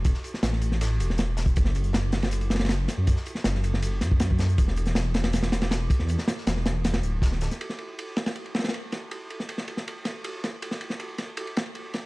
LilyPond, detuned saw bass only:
\new Staff \with { instrumentName = "Detuned saw bass" } { \clef bass \time 4/4 \key d \major \tempo 4 = 159 e,,16 r8. a,,4. e,,4. | fis,,2.~ fis,,8 r16 fis,16~ | fis,16 r8. fis,,4. fis,4. | e,,2.~ e,,8 r16 e,16~ |
e,16 r8. e,,4. d,,4~ d,,16 r16 | r1 | r1 | r1 | }